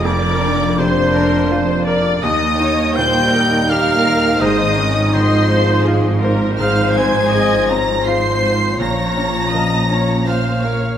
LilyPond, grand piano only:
\new Staff \with { instrumentName = "Grand piano" } { \time 3/4 \key bes \dorian \tempo 4 = 82 f,8 d'8 c8 d'8 f'8 bes'8 | ees,8 ees'8 bes,8 ees'8 g'8 bes'8 | aes,8 ees'8 ees8 ees'8 f'8 c''8 | aes,8 c'8 aes8 c'8 f'8 c''8 |
bes,8 des'8 f8 des'8 f'8 bes'8 | }